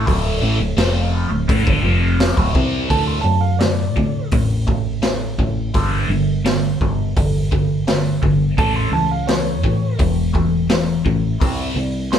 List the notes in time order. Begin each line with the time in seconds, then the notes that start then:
0.07 D1 D2 A2 D3, kick, open hi-hat
0.42 A1 A2 E3
0.60 D1 D2 A2
0.76 F1 F2 C3 F3, snare, open hi-hat
1.30 D1 D2 A2
1.48 A1 A2 E3, kick, open hi-hat
1.65 G1 G2 D3, kick
1.82 F1 F2 C3 F3
2.20 snare, open hi-hat
2.36 D1 D2 A2, kick
2.54 C2 C3 G3 C4, kick
2.89 D2 A2 D3 A5, kick, open hi-hat
3.07 C6
3.21 D2 F#2 A2 A5
3.41 F5
3.59 D2 A2 D5, snare, open hi-hat
3.96 D2 A2 D3, kick
4.31 A1 D2 A2, kick, open hi-hat
4.67 D2 A2, kick
5.02 D2 A2, snare, open hi-hat
5.38 A1 D2 A2, kick
5.74 G1 G2 D3 G3, kick, open hi-hat
6.09 G1 G2 D3
6.45 G2 D3, snare, open hi-hat
6.81 G1 G2 D3, kick
7.17 G1 G2 D3, kick, open hi-hat
7.51 G2 D3, kick
7.87 G2 D3, snare, open hi-hat
8.22 G1 G2 D3, kick
8.58 A1 A2 E3 A3 A5, kick, open hi-hat
8.76 C6
8.92 C#2 A2 E3 A5
9.11 F5
9.27 A2 E3 C#5, snare, open hi-hat
9.64 A2 E3, kick
9.99 E1 A2 E3, kick, open hi-hat
10.33 A2 E3, kick
10.69 A2 E3, snare, open hi-hat
11.05 A1 A2 E3, kick
11.40 C2 C3 G3 C4, kick, open hi-hat
11.76 C2 C3 G3
12.12 C3 G3 C6, snare, open hi-hat